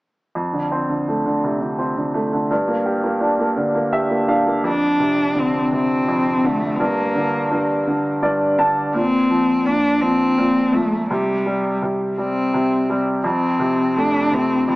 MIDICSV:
0, 0, Header, 1, 3, 480
1, 0, Start_track
1, 0, Key_signature, -1, "major"
1, 0, Tempo, 715990
1, 235, Time_signature, 6, 3, 24, 8
1, 9892, End_track
2, 0, Start_track
2, 0, Title_t, "Cello"
2, 0, Program_c, 0, 42
2, 3138, Note_on_c, 0, 62, 73
2, 3611, Note_on_c, 0, 60, 68
2, 3621, Note_off_c, 0, 62, 0
2, 3845, Note_off_c, 0, 60, 0
2, 3859, Note_on_c, 0, 60, 68
2, 4343, Note_on_c, 0, 57, 61
2, 4353, Note_off_c, 0, 60, 0
2, 4527, Note_on_c, 0, 60, 41
2, 4537, Note_off_c, 0, 57, 0
2, 4582, Note_on_c, 0, 58, 57
2, 4592, Note_off_c, 0, 60, 0
2, 5111, Note_off_c, 0, 58, 0
2, 6007, Note_on_c, 0, 60, 76
2, 6475, Note_on_c, 0, 62, 77
2, 6485, Note_off_c, 0, 60, 0
2, 6709, Note_on_c, 0, 60, 76
2, 6719, Note_off_c, 0, 62, 0
2, 7190, Note_on_c, 0, 57, 66
2, 7200, Note_off_c, 0, 60, 0
2, 7435, Note_off_c, 0, 57, 0
2, 7438, Note_on_c, 0, 55, 60
2, 7892, Note_off_c, 0, 55, 0
2, 8169, Note_on_c, 0, 60, 58
2, 8677, Note_off_c, 0, 60, 0
2, 8890, Note_on_c, 0, 60, 59
2, 9373, Note_on_c, 0, 62, 66
2, 9383, Note_off_c, 0, 60, 0
2, 9610, Note_on_c, 0, 60, 67
2, 9620, Note_off_c, 0, 62, 0
2, 9844, Note_off_c, 0, 60, 0
2, 9847, Note_on_c, 0, 60, 66
2, 9892, Note_off_c, 0, 60, 0
2, 9892, End_track
3, 0, Start_track
3, 0, Title_t, "Upright piano"
3, 0, Program_c, 1, 0
3, 236, Note_on_c, 1, 41, 41
3, 355, Note_on_c, 1, 50, 32
3, 378, Control_c, 1, 64, 127
3, 480, Note_on_c, 1, 60, 37
3, 588, Note_off_c, 1, 50, 0
3, 598, Note_on_c, 1, 50, 36
3, 723, Note_on_c, 1, 57, 34
3, 833, Note_off_c, 1, 50, 0
3, 843, Note_on_c, 1, 50, 35
3, 965, Note_on_c, 1, 48, 40
3, 1064, Note_off_c, 1, 50, 0
3, 1074, Note_on_c, 1, 50, 35
3, 1187, Note_off_c, 1, 60, 0
3, 1197, Note_on_c, 1, 60, 37
3, 1308, Note_off_c, 1, 50, 0
3, 1318, Note_on_c, 1, 50, 34
3, 1427, Note_off_c, 1, 57, 0
3, 1437, Note_on_c, 1, 57, 41
3, 1550, Note_off_c, 1, 50, 0
3, 1560, Note_on_c, 1, 50, 37
3, 1651, Note_off_c, 1, 41, 0
3, 1660, Note_off_c, 1, 48, 0
3, 1663, Note_off_c, 1, 60, 0
3, 1670, Note_off_c, 1, 57, 0
3, 1675, Note_off_c, 1, 50, 0
3, 1682, Note_on_c, 1, 43, 48
3, 1685, Control_c, 1, 64, 0
3, 1796, Note_on_c, 1, 58, 35
3, 1818, Control_c, 1, 64, 127
3, 1915, Note_on_c, 1, 67, 40
3, 2027, Note_off_c, 1, 58, 0
3, 2037, Note_on_c, 1, 58, 38
3, 2150, Note_on_c, 1, 62, 39
3, 2265, Note_off_c, 1, 58, 0
3, 2276, Note_on_c, 1, 58, 40
3, 2392, Note_on_c, 1, 50, 43
3, 2503, Note_off_c, 1, 58, 0
3, 2513, Note_on_c, 1, 58, 36
3, 2623, Note_off_c, 1, 67, 0
3, 2632, Note_on_c, 1, 76, 50
3, 2633, Note_on_c, 1, 67, 41
3, 2739, Note_off_c, 1, 58, 0
3, 2749, Note_on_c, 1, 58, 35
3, 2858, Note_off_c, 1, 76, 0
3, 2863, Note_off_c, 1, 62, 0
3, 2872, Note_on_c, 1, 77, 48
3, 2873, Note_on_c, 1, 62, 42
3, 2983, Note_off_c, 1, 58, 0
3, 2993, Note_on_c, 1, 58, 39
3, 3094, Note_off_c, 1, 43, 0
3, 3094, Note_off_c, 1, 50, 0
3, 3098, Note_off_c, 1, 77, 0
3, 3101, Note_off_c, 1, 67, 0
3, 3109, Note_off_c, 1, 62, 0
3, 3109, Note_on_c, 1, 41, 49
3, 3112, Note_off_c, 1, 58, 0
3, 3127, Control_c, 1, 64, 0
3, 3232, Control_c, 1, 64, 127
3, 3351, Note_on_c, 1, 48, 39
3, 3589, Note_on_c, 1, 50, 41
3, 3825, Note_off_c, 1, 48, 0
3, 3835, Note_on_c, 1, 48, 38
3, 4067, Note_off_c, 1, 41, 0
3, 4077, Note_on_c, 1, 41, 40
3, 4308, Note_off_c, 1, 50, 0
3, 4318, Note_on_c, 1, 50, 42
3, 4536, Note_off_c, 1, 48, 0
3, 4544, Note_off_c, 1, 41, 0
3, 4552, Note_off_c, 1, 50, 0
3, 4558, Note_on_c, 1, 43, 50
3, 4569, Control_c, 1, 64, 0
3, 4667, Control_c, 1, 64, 127
3, 4795, Note_on_c, 1, 50, 40
3, 5027, Note_off_c, 1, 43, 0
3, 5037, Note_on_c, 1, 43, 42
3, 5266, Note_off_c, 1, 50, 0
3, 5276, Note_on_c, 1, 50, 40
3, 5504, Note_off_c, 1, 43, 0
3, 5514, Note_on_c, 1, 43, 43
3, 5516, Note_on_c, 1, 74, 49
3, 5741, Note_off_c, 1, 74, 0
3, 5746, Note_off_c, 1, 50, 0
3, 5756, Note_on_c, 1, 81, 54
3, 5757, Note_on_c, 1, 50, 44
3, 5981, Note_off_c, 1, 81, 0
3, 5983, Note_off_c, 1, 43, 0
3, 5991, Note_off_c, 1, 50, 0
3, 5996, Note_on_c, 1, 46, 54
3, 6007, Control_c, 1, 64, 0
3, 6135, Control_c, 1, 64, 127
3, 6237, Note_on_c, 1, 53, 43
3, 6471, Note_off_c, 1, 46, 0
3, 6481, Note_on_c, 1, 46, 40
3, 6705, Note_off_c, 1, 53, 0
3, 6715, Note_on_c, 1, 53, 39
3, 6947, Note_off_c, 1, 46, 0
3, 6957, Note_on_c, 1, 46, 47
3, 7193, Note_off_c, 1, 53, 0
3, 7204, Note_on_c, 1, 53, 43
3, 7423, Note_off_c, 1, 46, 0
3, 7434, Note_off_c, 1, 53, 0
3, 7446, Note_on_c, 1, 48, 53
3, 7449, Control_c, 1, 64, 0
3, 7584, Control_c, 1, 64, 127
3, 7682, Note_on_c, 1, 55, 44
3, 7918, Note_off_c, 1, 48, 0
3, 7928, Note_on_c, 1, 48, 40
3, 8156, Note_off_c, 1, 55, 0
3, 8166, Note_on_c, 1, 55, 40
3, 8397, Note_off_c, 1, 48, 0
3, 8407, Note_on_c, 1, 48, 42
3, 8636, Note_off_c, 1, 55, 0
3, 8646, Note_on_c, 1, 55, 41
3, 8869, Note_off_c, 1, 48, 0
3, 8875, Note_off_c, 1, 55, 0
3, 8876, Note_on_c, 1, 41, 51
3, 8888, Control_c, 1, 64, 0
3, 9014, Control_c, 1, 64, 127
3, 9114, Note_on_c, 1, 48, 42
3, 9362, Note_on_c, 1, 57, 39
3, 9589, Note_off_c, 1, 48, 0
3, 9599, Note_on_c, 1, 48, 37
3, 9831, Note_off_c, 1, 41, 0
3, 9842, Note_on_c, 1, 41, 43
3, 9892, Note_off_c, 1, 41, 0
3, 9892, Note_off_c, 1, 48, 0
3, 9892, Note_off_c, 1, 57, 0
3, 9892, End_track
0, 0, End_of_file